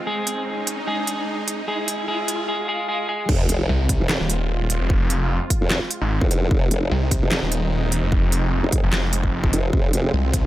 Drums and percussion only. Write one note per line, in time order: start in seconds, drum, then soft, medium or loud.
0.27 closed hi-hat medium
0.67 closed hi-hat medium
1.07 closed hi-hat medium
1.48 closed hi-hat medium
1.88 closed hi-hat medium
2.28 closed hi-hat medium
3.29 kick loud
3.29 crash loud
3.49 closed hi-hat medium
3.89 kick loud
3.89 closed hi-hat medium
4.09 snare loud
4.09 clap medium
4.30 closed hi-hat medium
4.70 closed hi-hat medium
4.90 kick loud
5.10 closed hi-hat medium
5.50 kick loud
5.50 closed hi-hat medium
5.70 snare loud
5.70 clap medium
5.91 closed hi-hat medium
6.21 kick loud
6.31 closed hi-hat medium
6.51 kick loud
6.71 closed hi-hat medium
7.11 kick loud
7.11 closed hi-hat medium
7.32 snare loud
7.32 clap medium
7.52 closed hi-hat medium
7.92 closed hi-hat medium
8.12 kick loud
8.32 closed hi-hat medium
8.72 kick loud
8.72 closed hi-hat medium
8.93 snare loud
8.93 clap medium
9.13 closed hi-hat medium
9.23 kick medium
9.44 kick loud
9.53 closed hi-hat medium
9.73 kick loud
9.93 closed hi-hat medium
10.34 kick loud
10.34 closed hi-hat medium